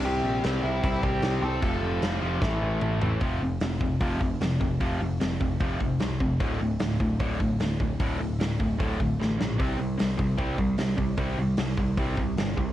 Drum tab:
CC |x-x-x-x-|x-x-----|--------|--------|
HH |--------|--------|o-o-o-o-|o-o-o-o-|
SD |--o---o-|--o-o---|--o---o-|--o---o-|
T2 |--------|------o-|--------|--------|
FT |--------|-------o|--------|--------|
BD |----oo--|o---o---|o--ooo-o|o--ooo-o|

CC |--------|--------|--------|--------|
HH |o-o-o-o-|o-o-o---|o-o-o-o-|o-o-o-o-|
SD |--o---o-|--o---oo|--o---o-|--o---o-|
T2 |--------|--------|--------|--------|
FT |--------|--------|--------|--------|
BD |o--ooo-o|o--ooo--|o--ooo-o|o--ooo-o|